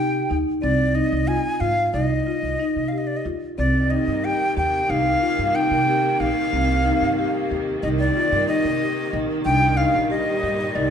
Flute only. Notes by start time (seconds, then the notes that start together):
Already playing: G5
0.62 D5
0.95 D#5
1.28 G#5
1.60 F5
1.93 D#5
2.88 F5
2.98 D#5
3.07 D5
3.17 D#5
3.58 D5
3.90 D#5
4.25 G5
4.57 G5
4.90 F5
5.55 G5
6.20 F5
7.83 D#5
7.99 D5
8.48 D#5
9.45 G5
9.77 F5
10.10 D#5
10.75 D5